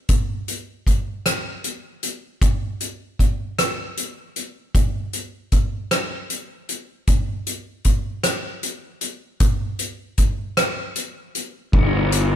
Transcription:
0.09 kick, closed hi-hat
0.48 closed hi-hat
0.87 kick, closed hi-hat
1.26 cross-stick, closed hi-hat
1.64 closed hi-hat
2.03 closed hi-hat
2.42 kick, closed hi-hat
2.81 closed hi-hat
3.19 kick, closed hi-hat
3.59 cross-stick, closed hi-hat
3.97 closed hi-hat
4.36 closed hi-hat
4.75 kick, closed hi-hat
5.13 closed hi-hat
5.52 kick, closed hi-hat
5.91 cross-stick, closed hi-hat
6.30 closed hi-hat
6.69 closed hi-hat
7.08 kick, closed hi-hat
7.47 closed hi-hat
7.85 kick, closed hi-hat
8.24 cross-stick, closed hi-hat
8.63 closed hi-hat
9.01 closed hi-hat
9.40 kick, closed hi-hat
9.79 closed hi-hat
10.18 kick, closed hi-hat
10.57 cross-stick, closed hi-hat
10.96 closed hi-hat
11.35 closed hi-hat
11.73 picked electric bass G1, kick, crash
12.12 closed hi-hat

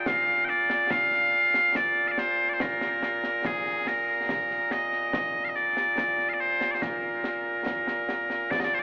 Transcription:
Already playing: bagpipes A#2
0.06 bagpipes F5, concert bass drum, snare
0.45 bagpipes G5, snare
0.49 bagpipes D5
0.70 snare
0.90 bagpipes F5, concert bass drum, snare
1.12 snare
1.54 snare
1.75 bagpipes D5, concert bass drum, snare
2.08 bagpipes D5 F5
2.18 bagpipes C5, snare
2.49 bagpipes D5
2.54 bagpipes C5
2.60 bagpipes A#4, concert bass drum, snare
2.81 snare
3.03 snare
3.24 snare
3.44 bagpipes G#4, concert bass drum, snare
3.66 snare
3.87 bagpipes A#4, snare
4.29 concert bass drum, snare
4.50 snare
4.71 bagpipes D#5, snare
4.92 snare
5.13 concert bass drum, snare
5.44 bagpipes F5
5.49 bagpipes D#5
5.55 bagpipes D5, snare
5.77 snare
5.98 concert bass drum, snare
6.19 snare
6.29 bagpipes F5
6.33 bagpipes D5
6.40 bagpipes C5
6.61 snare
6.71 bagpipes C5 D5
6.82 bagpipes A#4, concert bass drum, snare
7.24 snare
7.66 concert bass drum, snare
7.87 snare
8.09 snare
8.30 snare
8.51 bagpipes D5, concert bass drum, snare
8.60 bagpipes D#5
8.65 bagpipes D5
8.72 bagpipes C5, snare
8.79 bagpipes D5

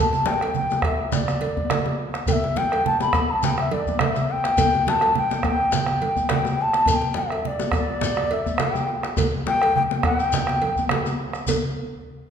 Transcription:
0.00 bansuri A5
0.13 djembe tone, shekere
0.25 bansuri G5, bombo rim, djembe slap, high conga, shekere
0.41 bombo rim, cowbell
0.54 bansuri G5, bombo rim, low conga, shekere
0.70 djembe slap, high conga, djembe tone, shekere
0.82 bansuri E5, bombo rim, bombo low, cowbell, djembe slap, djembe bass
1.12 bansuri D5, djembe slap, low conga, shekere
1.28 bombo rim, djembe tone, shekere
1.41 cowbell, high conga
1.57 bombo low, high conga, djembe bass
1.70 bombo rim, cowbell, djembe slap, high conga, low conga
1.86 djembe slap, djembe tone, high conga
2.00 high conga
2.14 bombo rim, djembe slap, high conga
2.26 bansuri G5, bombo low, cowbell, djembe bass, low conga, shekere
2.32 bansuri E5
2.44 djembe tone
2.56 bansuri G5, djembe slap, high conga
2.72 bombo rim, cowbell
2.85 bansuri A5, bombo rim, low conga
3.00 bansuri B5, djembe slap, djembe tone, high conga, shekere
3.13 bombo rim, bombo low, cowbell, djembe bass, shekere
3.31 bansuri A5, high conga
3.43 bansuri G5, djembe slap, high conga, low conga, shekere
3.58 bansuri E5, bombo rim, djembe tone
3.71 bansuri D5, cowbell, high conga
3.86 bombo low, djembe bass, shekere
3.99 bansuri E5, bombo rim, cowbell, djembe slap, low conga
4.16 djembe slap, djembe tone, shekere
4.30 bansuri G5, djembe slap
4.44 bombo rim, djembe slap
4.57 bombo low, cowbell, low conga, djembe bass, shekere
4.75 djembe tone
4.87 bansuri A5, djembe slap, high conga
5.01 bombo rim, cowbell
5.15 bansuri G5, bombo rim, low conga
5.31 djembe slap, djembe tone, high conga, shekere
5.43 bombo rim, bombo low, cowbell, djembe bass
5.47 bansuri G5
5.61 high conga
5.72 bansuri G5, djembe slap, high conga, low conga, shekere
5.86 bombo rim, djembe tone
6.02 cowbell, high conga
6.16 bombo low, djembe bass, shekere
6.29 bansuri G5, bombo rim, cowbell, djembe slap, low conga
6.45 djembe slap, djembe tone, shekere
6.58 djembe slap
6.62 bansuri A5
6.73 bombo rim, djembe slap
6.86 bombo low, cowbell, djembe bass, low conga, shekere
6.90 bansuri A5
6.95 bansuri G5
7.02 djembe tone
7.14 djembe slap, high conga
7.20 bansuri E5
7.30 bombo rim, cowbell
7.43 bansuri D5, bombo rim, low conga
7.60 djembe slap, djembe tone, high conga, shekere
7.72 bombo rim, bombo low, cowbell, djembe bass, shekere
7.76 bansuri D5
7.89 high conga
8.01 djembe slap, high conga, low conga, shekere
8.17 bombo rim, djembe tone
8.31 bansuri E5, cowbell, high conga
8.46 bombo low, djembe bass, shekere
8.58 bansuri G5, bombo rim, cowbell, djembe slap, low conga
8.75 djembe slap, djembe tone, shekere
8.89 djembe slap
9.03 bombo rim, djembe slap
9.17 bombo low, cowbell, djembe slap, djembe bass, low conga, shekere
9.34 high conga
9.46 bansuri G5, djembe slap, high conga
9.62 bombo rim, cowbell, djembe slap
9.76 bansuri G5, low conga
9.91 djembe slap, djembe tone
10.03 bansuri F#5, bombo rim, bombo low, cowbell, djembe bass
10.19 bansuri G5, bombo rim, djembe slap, shekere
10.32 bombo rim, djembe slap, high conga, low conga, shekere
10.47 bombo rim, djembe tone
10.60 bombo rim, cowbell, djembe slap, high conga
10.76 bombo rim, bombo low, djembe bass, shekere
10.89 bombo rim, cowbell, djembe slap, high conga, low conga
11.06 djembe slap, djembe tone, shekere
11.18 bombo rim
11.33 bombo rim, shekere
11.46 bombo low, cowbell, low conga, djembe bass, shekere

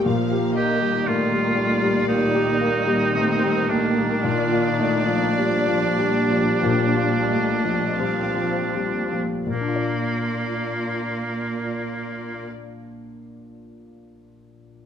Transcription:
0.05 grand piano A#2, cello section A#2, viola section F3 A#3, violin section F5
0.31 grand piano G4
0.53 viola section D#3, grand piano A#3, oboe G4, violin section D#5
0.81 grand piano G3
1.05 grand piano A3, viola section A#3, oboe F4, violin section D5
1.32 grand piano G3
1.57 viola section G3, grand piano A3
1.82 grand piano G3
2.07 viola section D#3 G3, grand piano A#3, oboe D#4
2.35 grand piano G4
2.61 grand piano A#3
2.87 grand piano G3
3.13 grand piano A3, viola section C4, violin section C5
3.43 grand piano G3
3.67 grand piano A3, viola section A#3, oboe D4, violin section A#4
3.98 grand piano G3
4.23 cello section A#2, grand piano A#2, viola section F4, violin section D5
4.51 grand piano F4
4.79 grand piano A3, viola section D#4
5.08 grand piano F3
5.37 viola section F3 D4, grand piano G3
5.67 grand piano F3
5.97 viola section G3, grand piano G3
6.30 grand piano F3
6.61 grand piano A#2, violin section C5
6.96 grand piano F4
7.29 grand piano A3, violin section D#5
7.64 grand piano F3
7.97 viola section F3 C4, grand piano G3, violin section F5
8.35 grand piano F3
8.75 grand piano G3
9.12 grand piano F3
9.46 cello section A#2, grand piano A#2, viola section A#3 F4, oboe A#3, violin section D5
9.54 grand piano A#3
9.61 grand piano D4
9.68 grand piano F4
9.75 grand piano D5

